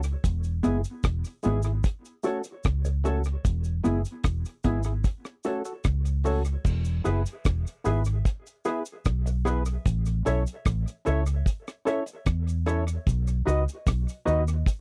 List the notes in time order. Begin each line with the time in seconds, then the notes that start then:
Already playing: C#2
0.03 closed hi-hat, cabasa
0.24 E1, kick, closed hi-hat, cabasa
0.44 closed hi-hat, cabasa
0.63 F#1 G#3 B3 E4 G#4, closed hi-hat, cabasa
0.84 closed hi-hat, cabasa
1.04 E1, kick, cross-stick, closed hi-hat, cabasa
1.25 closed hi-hat, cabasa
1.43 G#1 G#3 B3 E4 G#4, closed hi-hat, cabasa
1.47 G#4
1.63 E4 G#4, closed hi-hat, cabasa
1.84 kick, closed hi-hat, cabasa
2.05 closed hi-hat, cabasa
2.23 A3 C#4 F#4 A4 C#5, closed hi-hat, cabasa
2.44 muted clean electric guitar stroke, closed hi-hat, cabasa
2.64 C#2, kick, cross-stick, closed hi-hat, cabasa
2.85 muted clean electric guitar stroke, closed hi-hat, cabasa
3.04 A3 C#4 F#4 A4 C#5, closed hi-hat, cabasa
3.24 closed hi-hat, cabasa
3.45 E1, kick, closed hi-hat, cabasa
3.64 closed hi-hat, cabasa
3.83 F#1 G#3 B3 E4 G#4, closed hi-hat, cabasa
4.05 closed hi-hat, cabasa
4.24 E1, kick, cross-stick, closed hi-hat, cabasa
4.45 closed hi-hat, cabasa
4.64 G#1 G#3 B3 E4 G#4, kick, closed hi-hat, cabasa
4.83 E4 G#4, closed hi-hat, cabasa
5.04 kick, closed hi-hat, cabasa
5.25 cross-stick, closed hi-hat, cabasa
5.44 A3 C#4 F#4 A4 C#5, closed hi-hat, cabasa
5.65 F#4 A4, muted clean electric guitar stroke, closed hi-hat, cabasa
5.84 C#2, kick, cross-stick, closed hi-hat, cabasa
6.05 closed hi-hat, cabasa
6.24 A3 C#4 F#4 A4 C#5, open hi-hat, cabasa
6.45 closed hi-hat, cabasa
6.64 E1, kick, crash, cabasa
6.85 closed hi-hat, cabasa
7.04 F#1 B3 E4 G#4 B4 E5, closed hi-hat, cabasa
7.26 closed hi-hat, cabasa
7.45 E1, kick, cross-stick, closed hi-hat, cabasa
7.67 closed hi-hat, cabasa
7.84 G#1 B3 E4 G#4 B4 E5, closed hi-hat, cabasa
8.05 closed hi-hat, cabasa
8.25 kick, closed hi-hat, cabasa
8.47 closed hi-hat, cabasa
8.65 B3 E4 G#4 B4 E5, closed hi-hat, cabasa
8.85 closed hi-hat, cabasa
9.05 B1, kick, cross-stick, closed hi-hat, cabasa
9.26 muted clean electric guitar stroke, closed hi-hat, cabasa
9.45 B3 E4 G#4 B4 E5, cross-stick, closed hi-hat, cabasa
9.66 closed hi-hat, cabasa
9.86 A1, kick, closed hi-hat, cabasa
10.06 closed hi-hat, cabasa
10.25 B1 C#4 E4 A4 C#5 E5, closed hi-hat, cabasa
10.47 closed hi-hat, cabasa
10.65 A1, kick, cross-stick, closed hi-hat, cabasa
10.88 closed hi-hat, cabasa
11.05 C#2 C#4 E4 A4 C#5 E5, closed hi-hat, cabasa
11.26 closed hi-hat, cabasa
11.46 kick, closed hi-hat, cabasa
11.67 cross-stick, closed hi-hat, cabasa
11.85 C#4 E4 A4 C#5 E5, closed hi-hat, cabasa
12.06 muted clean electric guitar stroke, closed hi-hat, cabasa
12.26 E2, kick, cross-stick, closed hi-hat, cabasa
12.47 closed hi-hat, cabasa
12.66 C#4 E4 A4 C#5 E5, cross-stick, closed hi-hat, cabasa
12.88 closed hi-hat, cabasa
13.07 B1, kick, closed hi-hat, cabasa
13.27 closed hi-hat, cabasa
13.45 C#2 D#4 F#4 B4 D#5, closed hi-hat, cabasa
13.69 closed hi-hat, cabasa
13.87 B1, kick, cross-stick, closed hi-hat, cabasa
14.09 closed hi-hat, cabasa
14.25 D#2 D#4 F#4 B4 D#5, closed hi-hat, cabasa
14.48 closed hi-hat, cabasa
14.66 kick, closed hi-hat, cabasa